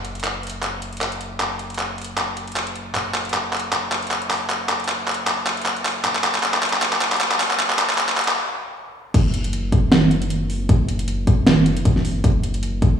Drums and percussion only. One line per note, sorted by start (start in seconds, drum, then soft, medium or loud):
0.05 closed hi-hat medium
0.15 closed hi-hat soft
0.20 closed hi-hat medium
0.24 clap medium
0.24 closed hi-hat medium
0.43 closed hi-hat soft
0.47 closed hi-hat medium
0.50 closed hi-hat medium
0.63 clap medium
0.63 closed hi-hat medium
0.82 closed hi-hat medium
0.93 closed hi-hat soft
0.97 closed hi-hat medium
1.01 clap medium
1.01 closed hi-hat medium
1.12 closed hi-hat medium
1.21 closed hi-hat medium
1.40 clap medium
1.40 closed hi-hat medium
1.59 closed hi-hat medium
1.70 closed hi-hat soft
1.74 closed hi-hat medium
1.79 clap medium
1.79 closed hi-hat medium
1.98 closed hi-hat soft
2.02 closed hi-hat medium
2.04 closed hi-hat medium
2.17 clap medium
2.17 closed hi-hat medium
2.37 closed hi-hat medium
2.48 closed hi-hat soft
2.52 closed hi-hat medium
2.56 clap medium
2.56 closed hi-hat medium
2.67 closed hi-hat medium
2.76 closed hi-hat medium
2.95 clap medium
2.95 closed hi-hat medium
3.14 clap medium
3.14 closed hi-hat medium
3.25 closed hi-hat soft
3.29 closed hi-hat medium
3.34 clap medium
3.34 closed hi-hat medium
3.53 clap medium
3.53 closed hi-hat soft
3.57 closed hi-hat medium
3.60 closed hi-hat medium
3.73 clap medium
3.73 closed hi-hat medium
3.92 clap medium
3.92 closed hi-hat medium
4.03 closed hi-hat soft
4.07 closed hi-hat medium
4.11 clap medium
4.11 closed hi-hat medium
4.22 closed hi-hat medium
4.30 clap medium
4.30 open hi-hat medium
4.50 clap medium
4.50 closed hi-hat medium
4.69 clap medium
4.69 closed hi-hat medium
4.80 closed hi-hat soft
4.84 closed hi-hat medium
4.88 clap medium
4.88 closed hi-hat medium
5.08 clap medium
5.08 closed hi-hat soft
5.11 closed hi-hat medium
5.14 closed hi-hat medium
5.27 clap medium
5.27 closed hi-hat medium
5.47 clap medium
5.47 closed hi-hat medium
5.57 closed hi-hat soft
5.62 closed hi-hat medium
5.66 clap medium
5.66 closed hi-hat medium
5.77 closed hi-hat medium
5.85 clap medium
5.85 open hi-hat medium
6.05 clap loud
6.05 closed hi-hat medium
6.15 clap medium
6.24 clap loud
6.24 closed hi-hat medium
6.35 clap medium
6.35 closed hi-hat soft
6.39 closed hi-hat medium
6.43 clap medium
6.43 closed hi-hat medium
6.54 clap medium
6.63 clap medium
6.63 closed hi-hat soft
6.66 closed hi-hat medium
6.69 closed hi-hat medium
6.73 clap medium
6.82 clap loud
6.82 closed hi-hat medium
6.93 clap medium
7.01 clap loud
7.01 closed hi-hat medium
7.12 clap medium
7.12 closed hi-hat soft
7.16 closed hi-hat medium
7.21 clap loud
7.21 closed hi-hat medium
7.31 clap medium
7.31 closed hi-hat medium
7.40 clap loud
7.40 open hi-hat medium
7.51 clap medium
7.59 clap loud
7.59 closed hi-hat medium
7.70 clap medium
7.79 clap loud
7.79 closed hi-hat medium
7.89 clap medium
7.89 closed hi-hat soft
7.94 closed hi-hat medium
7.98 clap loud
7.98 closed hi-hat medium
8.09 clap medium
8.18 clap loud
8.18 closed hi-hat soft
8.21 closed hi-hat medium
8.24 closed hi-hat medium
8.28 clap loud
9.14 kick loud
9.14 closed hi-hat medium
9.14 crash loud
9.34 closed hi-hat medium
9.44 closed hi-hat medium
9.53 closed hi-hat medium
9.72 kick loud
9.72 closed hi-hat medium
9.92 snare loud
9.92 closed hi-hat medium
10.11 closed hi-hat medium
10.22 closed hi-hat medium
10.30 closed hi-hat medium
10.50 open hi-hat medium
10.69 kick loud
10.69 closed hi-hat medium
10.89 closed hi-hat medium
10.99 closed hi-hat medium
11.08 closed hi-hat medium
11.27 kick loud
11.27 closed hi-hat medium
11.47 snare loud
11.47 closed hi-hat medium
11.66 closed hi-hat medium
11.77 closed hi-hat medium
11.85 kick loud
11.85 closed hi-hat medium
11.96 snare soft
12.05 open hi-hat medium
12.24 kick loud
12.24 closed hi-hat medium
12.43 closed hi-hat medium
12.54 closed hi-hat medium
12.63 closed hi-hat medium
12.82 kick loud
12.82 closed hi-hat medium